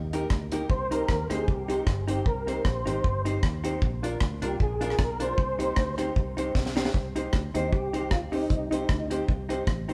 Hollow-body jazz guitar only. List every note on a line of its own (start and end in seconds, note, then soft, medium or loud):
0.13 0.26 D#4 medium
0.13 0.26 G4 medium
0.13 0.27 A#4 loud
0.52 0.65 D#4 medium
0.52 0.65 G4 medium
0.52 0.66 A#4 medium
0.91 1.04 D#4 medium
0.91 1.04 G4 medium
0.91 1.05 C5 medium
1.30 1.43 D#4 medium
1.30 1.43 G4 medium
1.30 1.44 C5 medium
1.68 1.82 D#4 medium
1.68 1.82 G4 medium
1.68 1.82 C5 loud
2.08 2.21 D#4 medium
2.08 2.21 G4 medium
2.08 2.21 C5 medium
2.47 2.60 D#4 medium
2.47 2.60 G4 medium
2.47 2.61 C5 medium
2.86 2.99 D#4 medium
2.86 2.99 G4 medium
2.86 3.00 C5 medium
3.25 3.38 D#4 medium
3.25 3.39 G4 medium
3.25 3.39 C5 medium
3.64 3.77 D#4 medium
3.64 3.77 G4 medium
3.64 3.78 C5 loud
4.03 4.16 D4 medium
4.03 4.17 F4 medium
4.03 4.17 A#4 medium
4.42 4.55 D4 medium
4.42 4.55 F4 medium
4.42 4.56 A#4 loud
4.81 4.94 D4 loud
4.81 4.94 F4 medium
4.81 4.95 A#4 loud
5.20 5.33 D4 medium
5.20 5.33 F4 medium
5.20 5.34 A#4 medium
5.59 5.72 D#4 medium
5.59 5.72 G4 medium
5.59 5.73 C5 medium
5.98 6.11 D#4 medium
5.98 6.11 G4 medium
5.98 6.12 C5 medium
6.37 6.50 D#4 medium
6.37 6.51 G4 medium
6.37 6.51 C5 medium
6.76 6.89 D#4 medium
6.76 6.90 G4 medium
6.76 6.90 C5 medium
7.16 7.28 D#4 medium
7.16 7.29 G4 medium
7.16 7.29 C5 medium
7.54 7.67 D#4 medium
7.54 7.68 G4 medium
7.54 7.68 C5 medium
7.93 8.06 D#4 medium
7.93 8.07 G4 medium
7.93 8.07 C5 medium
8.32 8.45 D#4 medium
8.32 8.46 G4 medium
8.32 8.46 C5 medium
8.71 8.84 D#4 medium
8.71 8.85 G4 medium
8.71 8.85 C5 medium
9.10 9.23 D#4 medium
9.10 9.24 G4 medium
9.10 9.24 C5 medium
9.49 9.62 D#4 medium
9.49 9.63 G4 medium
9.49 9.63 C5 medium
9.89 9.93 D#4 medium
9.89 9.93 G4 medium
9.89 9.93 C5 medium